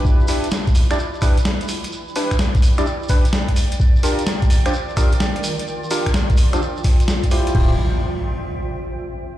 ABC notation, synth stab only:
X:1
M:4/4
L:1/16
Q:"Swing 16ths" 1/4=128
K:Ddor
V:1 name="Synth stab"
[DEGB]2 [DEGB]2 z3 [DEGd] z2 [DEGB] z4 z | z2 [DEGB]2 z3 [DEGd] z2 [DEGB] z4 z | z2 [DFG_B]2 z3 [DFGc] z2 [DFGB] z4 z | z2 [DFG_B]2 z3 [DFGc] z6 [EFGc]2 |
[EFGc]2 z12 z2 |]